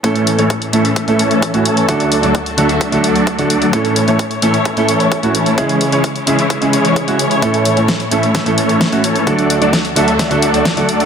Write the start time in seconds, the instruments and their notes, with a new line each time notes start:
0.03 grand piano A2 A3 C#4 E4 A4, string section A2 E3 C#4 A4, supersaw synth E3 A3 C#4 A4 C#5, kick, closed hi-hat
0.15 closed hi-hat
0.27 closed hi-hat
0.38 grand piano A2 A3 C#4 E4 C#5, supersaw synth E3 A3 C#4 A4 C#5, closed hi-hat
0.50 kick, closed hi-hat
0.62 closed hi-hat
0.73 grand piano A2 A3 C#4 E4 A4, supersaw synth E3 A3 C#4 A4 E5, closed hi-hat
0.85 closed hi-hat
0.96 supersaw synth E3 A3 C#4 A4 E5, kick, closed hi-hat
1.07 grand piano A2 A3 C#4 E4 A4, closed hi-hat
1.19 supersaw synth E3 A3 C#4 A4 C#5, closed hi-hat
1.31 closed hi-hat
1.42 kick, closed hi-hat
1.53 grand piano A2 A3 C#4 E4 F#4, supersaw synth E3 A3 C#4 A4 C#5, closed hi-hat
1.65 closed hi-hat
1.77 closed hi-hat
1.88 string section D2 D3 F#4, grand piano D3 A3 D4 F#4 A4, supersaw synth F#3 A3 D4 A4 D5, kick, closed hi-hat
2.00 closed hi-hat
2.12 closed hi-hat
2.23 grand piano D3 A3 D4 F#4 D5, supersaw synth F#3 A3 D4 A4 D5, closed hi-hat
2.35 kick, closed hi-hat
2.46 closed hi-hat
2.57 grand piano D3 A3 D4 F#4 A4, supersaw synth F#3 A3 D4 A4 E5, closed hi-hat
2.69 closed hi-hat
2.81 supersaw synth F#3 A3 D4 A4 E5, kick, closed hi-hat
2.92 grand piano D3 A3 D4 F#4 A4, closed hi-hat
3.04 supersaw synth F#3 A3 D4 A4 D5, closed hi-hat
3.15 closed hi-hat
3.27 kick, closed hi-hat
3.38 grand piano D3 A3 D4 F#4 A4, supersaw synth F#3 A3 D4 A4 D5, closed hi-hat
3.50 closed hi-hat
3.62 closed hi-hat
3.73 grand piano A2 A3 C#4 E4 A4, string section A2 A3 E4 C#5, supersaw synth E3 A3 C#4 A4 C#5, kick, closed hi-hat
3.85 closed hi-hat
3.96 closed hi-hat
4.07 grand piano A2 A3 C#4 E4 C#5, supersaw synth E3 A3 C#4 A4 C#5, closed hi-hat
4.19 kick, closed hi-hat
4.31 closed hi-hat
4.42 grand piano A2 A3 C#4 E4 A4, supersaw synth E3 A3 C#4 A4 E5, closed hi-hat
4.54 closed hi-hat
4.65 supersaw synth E3 A3 C#4 A4 E5, kick, closed hi-hat
4.76 grand piano A2 A3 C#4 E4 A4, closed hi-hat
4.89 supersaw synth E3 A3 C#4 A4 C#5, closed hi-hat
5.00 closed hi-hat
5.12 kick, closed hi-hat
5.23 grand piano A2 A3 C#4 E4 F#4, supersaw synth E3 A3 C#4 A4 C#5, closed hi-hat
5.35 closed hi-hat
5.46 closed hi-hat
5.57 grand piano C#3 G#3 C#4 E4 G#4, string section C#3 G#3 C#5, supersaw synth E3 G#3 C#4 G#4 C#5, kick, closed hi-hat
5.69 closed hi-hat
5.81 closed hi-hat
5.92 grand piano C#3 G#3 C#4 E4 C#5, supersaw synth E3 G#3 C#4 G#4 C#5, closed hi-hat
6.04 kick, closed hi-hat
6.16 closed hi-hat
6.26 grand piano C#3 G#3 C#4 E4 G#4, supersaw synth E3 G#3 C#4 G#4 E5, closed hi-hat
6.39 closed hi-hat
6.50 supersaw synth E3 G#3 C#4 G#4 E5, kick, closed hi-hat
6.61 grand piano C#3 G#3 C#4 E4 G#4, closed hi-hat
6.73 supersaw synth E3 G#3 C#4 G#4 C#5, closed hi-hat
6.85 closed hi-hat
6.96 kick, closed hi-hat
7.07 grand piano C#3 G#3 C#4 E4 F#4, supersaw synth E3 G#3 C#4 G#4 C#5, closed hi-hat
7.19 closed hi-hat
7.31 closed hi-hat
7.42 grand piano A2 A3 C#4 E4 A4, string section A2 A3, supersaw synth E3 A3 C#4 A4 C#5, kick, closed hi-hat
7.54 closed hi-hat
7.65 closed hi-hat
7.76 grand piano A2 A3 C#4 E4 C#5, supersaw synth E3 A3 C#4 A4 C#5, closed hi-hat
7.88 kick, snare, closed hi-hat
8.00 closed hi-hat
8.11 grand piano A2 A3 C#4 E4 A4, supersaw synth E3 A3 C#4 A4 E5, closed hi-hat
8.23 closed hi-hat
8.34 supersaw synth E3 A3 C#4 A4 E5, kick, snare, closed hi-hat
8.46 grand piano A2 A3 C#4 E4 A4, closed hi-hat
8.58 supersaw synth E3 A3 C#4 A4 C#5, closed hi-hat
8.69 closed hi-hat
8.81 kick, snare, closed hi-hat
8.92 grand piano A2 A3 C#4 E4 F#4, supersaw synth E3 A3 C#4 A4 C#5, closed hi-hat
9.04 closed hi-hat
9.16 closed hi-hat
9.26 string section D2 D3 F#4 A4, grand piano D3 A3 D4 F#4 A4, supersaw synth F#3 A3 D4 A4 D5, kick, closed hi-hat
9.39 closed hi-hat
9.50 closed hi-hat
9.61 grand piano D3 A3 D4 F#4 D5, supersaw synth F#3 A3 D4 A4 D5, closed hi-hat
9.73 kick, snare, closed hi-hat
9.85 closed hi-hat
9.96 grand piano D3 A3 D4 F#4 A4, supersaw synth F#3 A3 D4 A4 E5, closed hi-hat
10.08 closed hi-hat
10.19 supersaw synth F#3 A3 D4 A4 E5, kick, snare, closed hi-hat
10.30 grand piano D3 A3 D4 F#4 A4, closed hi-hat
10.42 supersaw synth F#3 A3 D4 A4 D5, closed hi-hat
10.54 closed hi-hat
10.65 kick, snare, closed hi-hat
10.76 grand piano D3 A3 D4 F#4 A4, supersaw synth F#3 A3 D4 A4 D5, closed hi-hat
10.89 closed hi-hat
11.00 closed hi-hat